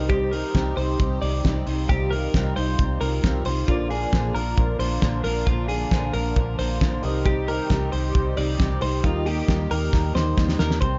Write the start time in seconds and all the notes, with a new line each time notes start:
Already playing: C2 C3 D#3 G3 D#4 G4 C5 D#5
0.09 C3 G3 C4 D#4 G4, kick, closed hi-hat
0.31 C4 D#4 G4 A#4, open hi-hat
0.54 C2 C3 G3 C4 D#4 G4, kick, snare, closed hi-hat
0.76 C2 C4 D#4 G4 C5, open hi-hat
0.98 C2 G3 C4 D#4 G4, kick, closed hi-hat
1.21 C2 C4 D#4 G4 D5, open hi-hat
1.44 C2 C3 G3 C4 D#4 G4, kick, snare, closed hi-hat
1.66 C2 C4 D#4 F4 G4 C5, open hi-hat
1.89 C2 C3 G3 C4 D#4 G4, kick, closed hi-hat
2.11 C4 D#4 G4 A#4, open hi-hat
2.34 C2 C3 G3 C4 D#4 G4, kick, snare, closed hi-hat
2.56 C2 C4 D#4 G4 C5, open hi-hat
2.79 C2 G3 C4 D#4 G4, kick, closed hi-hat
3.00 C2 C4 D#4 G4 A#4, open hi-hat
3.23 C2 C3 G3 C4 D#4 G4, kick, snare, closed hi-hat
3.45 C2 C4 D#4 G4 C5, open hi-hat
3.67 A#1 A#2 D3 F3 A#3 D4 F4 A#4 D5, kick, closed hi-hat
3.90 F3 A#3 D4 G#4 A#4, open hi-hat
4.13 A#1 A#2 D3 F3 A#3 D4 A#4, kick, snare, closed hi-hat
4.35 A#1 F3 A#3 D4 A#4, open hi-hat
4.57 A#1 F3 A#3 D4 A#4, kick, closed hi-hat
4.79 A#1 F3 A#3 D4 A#4 C5, open hi-hat
5.01 A#1 A#2 D3 F3 A#3 D4 A#4, kick, snare, closed hi-hat
5.24 A#1 F3 A#3 D4 A#4, open hi-hat
5.46 A#1 A#2 D3 F3 A#3 D4 F4 A#4, kick, closed hi-hat
5.68 F3 A#3 D4 G#4 A#4, open hi-hat
5.91 A#1 A#2 D3 F3 A#3 D4 A#4, kick, snare, closed hi-hat
6.14 A#1 F3 A#3 D4 A#4, open hi-hat
6.36 A#1 F3 A#3 D4 A#4, kick, closed hi-hat
6.59 A#1 F3 A#3 D4 A#4 C5, open hi-hat
6.81 A#1 A#2 D3 F3 A#3 D4 A#4, kick, snare, closed hi-hat
7.02 C2 C3 D#3 G3 C4 D#4 G4 A#4 C5 D#5, open hi-hat
7.25 C3 G3 C4 D#4 G4, kick, closed hi-hat
7.47 C4 D#4 G4 A#4, open hi-hat
7.70 C2 C3 G3 C4 D#4 G4, kick, snare, closed hi-hat
7.91 C2 C4 D#4 G4 C5, open hi-hat
8.14 C2 G3 C4 D#4 G4, kick, closed hi-hat
8.36 C2 C4 D#4 G4 D5, open hi-hat
8.58 C2 C3 G3 C4 D#4 G4, kick, snare, closed hi-hat
8.81 C2 C4 D#4 G4 C5, open hi-hat
9.03 D#2 A#2 D#3 G3 A#3 D#4 F4 G4 A#4 D#5, kick, closed hi-hat
9.25 A#3 D#4 G4, open hi-hat
9.48 D#2 D#3 G3 A#3 D#4 G4, kick, snare, closed hi-hat
9.71 D#2 A#3 D#4 G4 A#4, open hi-hat
9.92 D#2 G3 A#3 D#4 G4, kick, snare
10.14 D#2 A#3 D#4 G4 C5, snare
10.37 D#2 D#3 G3 A#3 D#4 G4, kick, snare
10.49 snare
10.59 D#2 A#3 D#4 G4 A#4, snare
10.71 snare
10.81 C2 C3 G3 C4 D#4 G4 C5, kick, closed hi-hat